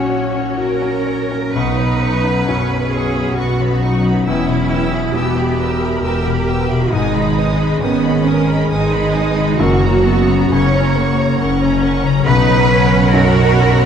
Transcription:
Already playing: grand piano A#1 A#2 C#4 F#4, cello section A#2, harp A#2 F#3 A#3 C#4 F#4, viola section C#4 F#4, violin section C#5, flute F#5
0.10 grand piano C#5
0.35 grand piano C#4, harp F#4
0.58 harp C#4, grand piano F#4, cello section A#4
0.82 harp A#3, grand piano C#4
1.06 harp C#4, grand piano C#5
1.31 harp A#3, grand piano C#4
1.53 double bass section B1, grand piano B1, harp B2, viola section D#4, cello section B4, violin section B4 F#5 C#6
1.77 harp F#3, violin section B4 C#5 B5
2.00 harp C#4, violin section B4 F#5 C#6
2.23 harp F#4, violin section B4 C#5 B5
2.46 double bass section B1, grand piano F#2, viola section C#4, violin section B4 F#5 C#6, harp B4
2.69 violin section B4 C#5 B5, harp C#5
2.91 cello section G#4, violin section B4 F#5 C#6, harp B4
3.14 harp F#4, violin section B4 C#5 B5
3.35 double bass section B1, viola section B3, harp C#4, cello section F#4, violin section B4 F#5 C#6
3.59 harp F#3, violin section B4 C#5 B5
3.80 harp C#4, viola section D#4, violin section B4 F#5 C#6
4.03 harp F#3, violin section B4 C#5 B5
4.25 double bass section E1, harp E2, grand piano E2, viola section C#4, cello section E4, violin section B4 G5 E6
4.47 harp B2, violin section E5 B5
4.69 harp B3, violin section B4 G5 E6
4.91 harp G4, violin section E5 B5
5.13 double bass section E1, grand piano B2, viola section B3, cello section G4, violin section B4 G5 E6, harp B4
5.36 harp G4, violin section E5 B5
5.58 viola section A#4, violin section B4 G5 E6, harp B4
5.81 harp G4, violin section E5 B5
6.03 double bass section E1, harp B3, cello section G4, violin section B4 G5 E6
6.24 harp B2, violin section E5 B5
6.48 harp B3, violin section B4 G5 E6
6.69 harp B2, violin section E5 B5
6.91 double bass section G#1, grand piano G#2, harp G#2, viola section G#3, cello section D#4, violin section B4 G#5 D#6
7.14 harp D#3, violin section D#5 B5
7.37 harp G#3, violin section B4 G#5 D#6
7.58 harp G#4, violin section D#5 B5
7.81 double bass section G#1, grand piano D#3, viola section B3, cello section C#4, violin section B4 G#5 D#6, harp B4
8.02 harp G#4, violin section D#5 B5
8.25 viola section A#4, violin section B4 G#5 D#6
8.47 harp G#4, violin section D#5 B5
8.69 double bass section G#1, viola section G#3, harp G#3, cello section D#4, violin section B4 G#5 D#6
8.91 violin section D#5 B5
8.95 harp D#3
9.13 harp G#3, violin section B4 G#5 D#6
9.35 harp D#3, violin section D#5 B5
9.57 double bass section F#1, harp F#2, grand piano F#2, viola section A#3, cello section F#4, violin section A#4 F#5 C#6
9.80 harp C#3, violin section C#5 A#5
10.02 viola section B3, violin section A#4 F#5 C#6
10.07 harp C#4
10.27 harp A#4, violin section C#5 A#5
10.31 violin section A#5
10.49 double bass section F#1, grand piano C#3, viola section C#4, violin section A#4 F#5 C#6, cello section C#5
10.74 harp A#4, violin section C#5 A#5
10.95 viola section A#3, violin section A#4 F#5 C#6, harp C#5
11.17 harp A#4, violin section C#5 A#5
11.38 double bass section F#1, viola section C#4, harp C#4, violin section A#4 F#5 C#6
11.59 harp C#3, violin section C#5 A#5
11.64 violin section A#5
11.81 harp C#4, violin section A#4 F#5 C#6
12.03 harp C#3, violin section C#5 A#5
12.26 double bass section B1, grand piano B1, harp B2, viola section D#4, cello section B4, violin section C#5 F#5 B5
12.49 harp F#3
12.71 viola section C#4
12.92 harp F#4
13.13 grand piano F#2, viola section F#4, cello section A#4, harp C#5
13.36 harp F#4
13.58 harp C#5
13.80 harp F#4

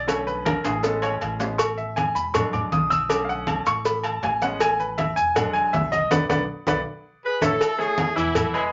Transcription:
Already playing: upright bass B1
0.07 grand piano D3 A3 C#4 C#5, cowbell, high conga, low agogo, maracas
0.27 grand piano B4, high conga, maracas
0.45 grand piano A#4, cowbell, high conga, high timbale, low agogo, maracas
0.64 upright bass A1, grand piano G#4, cowbell, high conga, high timbale, low agogo, maracas
0.83 grand piano G#3 B3 C#4 A4, cowbell, high conga, maracas
1.02 grand piano C#5, cowbell, high conga, low agogo, maracas
1.21 upright bass A1, cowbell, high conga, low agogo, maracas
1.39 grand piano G#3 B3 C#4, cowbell, high conga, low timbale, maracas
1.58 grand piano C#6, cowbell, high conga, low agogo, maracas
1.78 grand piano E5, high conga, maracas
1.96 grand piano G#5, cowbell, high conga, low agogo, maracas
2.15 upright bass E1, grand piano B5, maracas
2.33 grand piano F#3 G#3 D4 C#6, cowbell, high conga, low conga, low agogo, maracas
2.53 grand piano D6, high conga, low conga, low agogo, maracas
2.72 upright bass B1, grand piano D#6, cowbell, high conga, maracas
2.90 grand piano E6, high conga, low agogo, maracas
3.09 grand piano D3 A3 C#4 D6, cowbell, high conga, low agogo, maracas
3.25 grand piano F5, high conga
3.29 grand piano F#5, maracas
3.47 grand piano A5, cowbell, high conga, low agogo, maracas
3.66 upright bass A1, grand piano C#6, cowbell, high conga, low agogo, maracas
3.85 grand piano B5, cowbell, high conga, maracas
4.04 grand piano A5, cowbell, high conga, low agogo, maracas
4.22 upright bass A1, grand piano G#5, cowbell, high conga, low timbale, low agogo, maracas
4.41 grand piano G#3 B3 C#4 F#5, cowbell, high conga, maracas
4.60 grand piano G#5, cowbell, high conga, low agogo, maracas
4.80 grand piano B4, high conga, maracas
4.98 grand piano E5, cowbell, high conga, low agogo, maracas
5.16 upright bass E1, grand piano G#5, high conga, maracas
5.35 grand piano F#3 G#3 D4 F#5, cowbell, high conga, low conga, low agogo, maracas
5.53 grand piano G#5, high conga, low agogo, maracas
5.73 upright bass B1, grand piano E5, cowbell, high conga, low timbale, maracas
5.92 grand piano D#5, high conga, low agogo, maracas
6.11 upright bass B1, grand piano B4 D5 F#5, cowbell, high conga, high timbale, maracas
6.29 upright bass B1, grand piano B4 D5 F#5, cowbell, high conga, high timbale, maracas
6.67 upright bass B1, grand piano B4 D5 F#5, cowbell, high conga, high timbale, maracas
7.24 horn section G#4 B4
7.41 upright bass A1, horn section E4 A4, grand piano A4 C#5 E5, cowbell, high conga, high timbale, maracas
7.61 cowbell, high conga, low agogo, maracas
7.79 grand piano A3 G#4 C#5, horn section E4 G#4, high conga, maracas
7.98 cowbell, high conga, low agogo, maracas
8.16 upright bass E1, grand piano E3 E4 E5, horn section B3 E4, high conga, maracas
8.35 cowbell, high conga, low conga, low agogo, maracas
8.53 grand piano G#3 G#4 B4, horn section C#4 E4, high conga, low agogo, maracas

